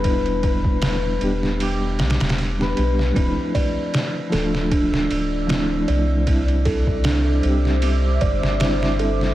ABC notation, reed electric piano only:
X:1
M:4/4
L:1/16
Q:"Swing 16ths" 1/4=77
K:Ddor
V:1 name="Reed electric piano"
[G,B,DE]6 [G,B,DG]6 z [G,B,DG]3 | [F,A,DE]6 [F,A,DF]6 [F,A,DE] z3 | [G,CDE]6 [G,CDG]6 [G,CDE] z3 |]